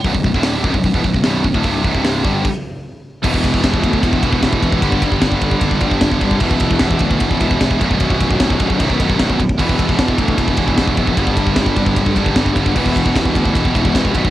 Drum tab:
CC |----------------|--------x-------|x---------------|----------------|
RD |----------------|----------------|--x-x-x-x-x-x-x-|x-x-x-x-x-x-x-x-|
HH |o---o---o---o---|o---o-----------|----------------|----------------|
SD |----o-------o---|----o-----------|----o-------o---|----o-------o---|
BD |oooo--oooooo--oo|o-oo--o-o-------|oooooooooooooooo|oooooooooooooooo|

CC |x---------------|----------------|x---------------|----------------|
RD |--x-x-x-x-x-x-x-|x-x-x-x-x-x-x-x-|--x-x-x-x-x-x-x-|x-x-x-x-x-x-x-x-|
HH |----------------|----------------|----------------|----------------|
SD |----o-------o---|----o-------o---|----o-------o---|----o-------o---|
BD |oooooooooooooooo|oooooooooooooooo|oooooooooooooooo|oooooooooooooooo|

CC |x---------------|
RD |--x-x-x-x-x-x-x-|
HH |----------------|
SD |----o-------o---|
BD |oooooooooooooooo|